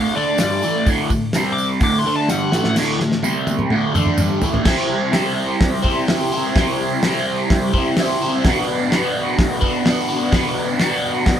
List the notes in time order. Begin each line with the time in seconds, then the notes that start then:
Already playing: D2 A2 D3 F5
0.16 D3 A3 D4 D5
0.38 G2 D3 G3 D5, snare, open hi-hat, tambourine
0.62 A2 E3 A3, tambourine
0.86 D2 A2 D3, kick, open hi-hat, tambourine
1.10 D2 A2, kick, tambourine
1.33 C3 G3, snare, open hi-hat, tambourine
1.37 C4
1.53 D6
1.58 tambourine
1.80 D2 A2 D3 D6, kick, open hi-hat, tambourine
2.00 C6
2.05 D3 A3 D4, tambourine
2.16 A5
2.28 G2 D3 G3 F#5, snare, tambourine
2.52 A2 E3 A3, snare, tambourine
2.64 snare
2.76 D2 A2 D3, snare, crash, tambourine
3.00 D2 A2, snare, tambourine
3.12 snare
3.23 C3 G3 C4, high tom, tambourine
3.47 high tom, tambourine
3.59 mid tom
3.70 D2 A2, mid tom
3.74 D3
3.95 D3 A3 D4, mid tom, tambourine
4.06 mid tom
4.18 G2 D3 G3, mid tom, tambourine
4.41 A2 E3 A3, floor tom, tambourine
4.54 floor tom
4.64 C3 G3 C4 E4, kick, snare, crash
4.68 G4 C5
5.11 C3 G3 C4 E4 G4, snare, open hi-hat
5.16 C5
5.61 kick, snare, open hi-hat
5.82 E4 G4 C5, kick
5.87 C4
6.07 C4 E4 G4, snare, open hi-hat
6.12 C5
6.32 E4 G4 C5
6.37 C4
6.56 C3 G3 C4 E4, kick, snare, open hi-hat
6.60 G4 C5
7.03 C3 G3 C4 E4, snare, open hi-hat
7.08 G4 C5
7.50 kick, snare, open hi-hat
7.73 E4 G4 C5, kick
7.78 C4
7.97 C4 E4, snare, open hi-hat
8.02 G4 C5
8.22 E4 G4 C5
8.26 C4
8.45 B2 F#3 B3, kick, snare, open hi-hat
8.49 D4 F#4 B4
8.91 B2 F#3 B3 D4, snare, open hi-hat
8.95 F#4 B4
9.39 kick, snare, open hi-hat
9.61 D4 F#4 B4, kick
9.66 B3
9.85 B3 D4 F#4, snare, open hi-hat
9.90 B4
10.08 D4 F#4 B4
10.13 B3
10.31 B2 F#3 B3 D4 F#4, kick, snare, open hi-hat
10.36 B4
10.78 B2 F#3 B3 D4, snare, open hi-hat
10.82 F#4 B4
11.26 kick, snare, open hi-hat